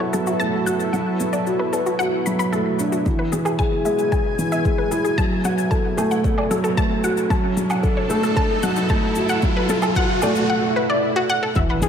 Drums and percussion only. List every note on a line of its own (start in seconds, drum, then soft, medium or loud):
0.14 shaker medium
0.27 shaker soft
0.40 shaker soft
0.67 shaker medium
0.80 shaker soft
0.94 shaker soft
1.20 shaker medium
1.33 shaker soft
1.47 shaker soft
1.73 shaker medium
1.86 shaker soft
2.00 shaker soft
2.26 shaker medium
2.40 shaker soft
2.53 shaker soft
2.79 shaker medium
2.93 shaker soft
3.06 kick medium
3.06 shaker soft
3.33 shaker medium
3.46 low woodblock medium
3.46 shaker soft
3.59 kick medium
3.59 shaker soft
3.85 shaker medium
3.99 shaker soft
4.12 kick medium
4.12 shaker soft
4.39 shaker medium
4.52 shaker soft
4.65 kick loud
4.65 shaker soft
4.92 shaker medium
5.05 shaker soft
5.18 kick medium
5.18 shaker soft
5.45 shaker medium
5.58 shaker soft
5.71 kick medium
5.71 shaker soft
5.98 low woodblock medium
5.98 shaker medium
6.11 shaker soft
6.24 kick medium
6.24 shaker soft
6.38 low woodblock medium
6.51 shaker medium
6.64 shaker soft
6.77 kick loud
6.77 shaker soft
7.04 shaker medium
7.17 shaker soft
7.31 kick medium
7.31 shaker soft
7.57 shaker medium
7.70 low woodblock medium
7.70 shaker soft
7.84 kick loud
7.84 shaker soft
8.10 shaker medium
8.23 shaker soft
8.37 kick medium
8.37 shaker soft
8.63 shaker medium
8.76 shaker soft
8.89 kick loud
8.89 shaker soft
9.15 shaker medium
9.29 shaker soft
9.42 kick loud
9.42 shaker soft
9.69 shaker medium
9.82 low woodblock medium
9.82 shaker soft
9.96 kick loud
9.96 shaker soft
10.22 low woodblock medium
10.22 shaker medium
10.36 shaker soft
11.55 kick loud
11.55 shaker soft
11.82 shaker medium